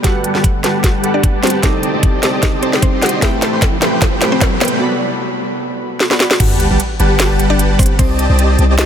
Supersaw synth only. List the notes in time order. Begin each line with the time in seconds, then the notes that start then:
0.04 G3 G4 B4 F#5 A5
0.35 G3 G4 B4 F#5 A5
0.64 G3 G4 B4 F#5 A5
1.63 C4 G4 D5 D#5 A5
1.94 C4 G4 D5 D#5 A5
2.23 C4 G4 D5 D#5 A5
2.73 C4 G4 D5 D#5 C6
3.22 A3 G4 B4 C5 A5
3.53 A3 G4 B4 C5 C6
3.82 A3 G4 B4 C5 G5
6.40 G3 G4 B4 F#5 A5
6.70 G3 G4 B4 F#5 A5
7.00 G3 G4 B4 F#5 A5
7.99 C4 G4 D5 D#5 A5
8.30 C4 G4 D5 D#5 A5
8.59 C4 G4 D5 D#5 A5